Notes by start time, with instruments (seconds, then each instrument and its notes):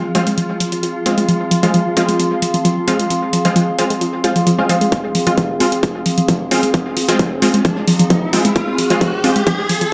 Already playing: synth drone F3 F4, ambient pad C4 G#4 F5 C6
0.15 synth stab G#3 C4 F4, synth arpeggio sound C4, closed hi-hat
0.27 synth arpeggio sound G#3, closed hi-hat
0.38 synth arpeggio sound F3, closed hi-hat
0.60 synth arpeggio sound F3, closed hi-hat
0.72 synth arpeggio sound F3, closed hi-hat
0.83 synth arpeggio sound F3, closed hi-hat
1.06 synth stab G#3 C4 F4, synth arpeggio sound C4, closed hi-hat
1.18 synth arpeggio sound G#3, closed hi-hat
1.29 synth arpeggio sound F3, closed hi-hat
1.51 synth arpeggio sound F3, closed hi-hat
1.63 synth arpeggio sound F3, synth stab G#3 C4 F4, closed hi-hat
1.74 synth arpeggio sound F3, closed hi-hat
1.97 synth stab G#3 C4 F4, synth arpeggio sound C4, closed hi-hat
2.09 synth arpeggio sound G#3, closed hi-hat
2.19 synth arpeggio sound F3, closed hi-hat
2.42 synth arpeggio sound F3, closed hi-hat
2.54 synth arpeggio sound F3, closed hi-hat
2.65 synth arpeggio sound F3, closed hi-hat
2.88 synth stab G#3 C4 F4, synth arpeggio sound C4, closed hi-hat
2.99 synth arpeggio sound G#3, closed hi-hat
3.10 synth arpeggio sound F3, closed hi-hat
3.33 synth arpeggio sound F3, closed hi-hat
3.45 synth arpeggio sound F3, synth stab G#3 C4 F4, closed hi-hat
3.56 synth arpeggio sound F3, closed hi-hat
3.79 synth stab G#3 C4 F4, synth arpeggio sound C4, closed hi-hat
3.90 synth arpeggio sound G#3, closed hi-hat
4.01 synth arpeggio sound F3, closed hi-hat
4.24 synth stab G#3 C4 F4, synth arpeggio sound F4, closed hi-hat
4.36 synth arpeggio sound F3, closed hi-hat
4.47 synth arpeggio sound F3, closed hi-hat
4.59 synth stab G#3 C4 F4
4.69 synth arpeggio sound F3, synth stab G#3 C4 F4, closed hi-hat
4.81 synth arpeggio sound G#3, closed hi-hat
4.92 synth arpeggio sound F3, kick, closed hi-hat, riser
5.15 synth arpeggio sound F3, open hi-hat
5.27 synth arpeggio sound F3, synth stab G#3 C4 F4, closed hi-hat
5.38 synth arpeggio sound F3, kick, closed hi-hat
5.60 synth stab G#3 C4 F4, synth arpeggio sound C4, open hi-hat
5.72 synth arpeggio sound G#3, closed hi-hat
5.83 synth arpeggio sound F3, kick, closed hi-hat
6.06 synth arpeggio sound F3, open hi-hat
6.18 synth arpeggio sound F3, closed hi-hat
6.28 synth arpeggio sound F3, kick, closed hi-hat
6.51 synth stab G#3 C4 F4, synth arpeggio sound C4, open hi-hat
6.63 synth arpeggio sound G#3, closed hi-hat
6.74 synth arpeggio sound F3, kick, closed hi-hat
6.97 synth arpeggio sound F3, open hi-hat
7.08 synth arpeggio sound F3, synth stab G#3 C4 F4, closed hi-hat
7.19 synth arpeggio sound F3, kick, closed hi-hat
7.42 synth stab G#3 C4 F4, synth arpeggio sound C4, open hi-hat
7.54 synth arpeggio sound G#3, closed hi-hat
7.65 synth arpeggio sound F3, kick, closed hi-hat
7.88 synth arpeggio sound F3, open hi-hat
7.99 synth arpeggio sound F3, closed hi-hat
8.10 synth arpeggio sound F3, kick, closed hi-hat
8.33 synth stab G#3 C4 F4, synth arpeggio sound C4, open hi-hat
8.45 synth arpeggio sound G#3, closed hi-hat
8.56 synth arpeggio sound F3, kick, closed hi-hat
8.78 synth arpeggio sound F3, open hi-hat
8.90 synth arpeggio sound F3, synth stab G#3 C4 F4, closed hi-hat
9.01 synth arpeggio sound F3, kick, closed hi-hat
9.24 synth stab G#3 C4 F4, synth arpeggio sound C4, open hi-hat
9.36 synth arpeggio sound G#3, closed hi-hat
9.47 synth arpeggio sound F3, kick, closed hi-hat
9.69 synth arpeggio sound F3, open hi-hat
9.81 synth arpeggio sound F3, closed hi-hat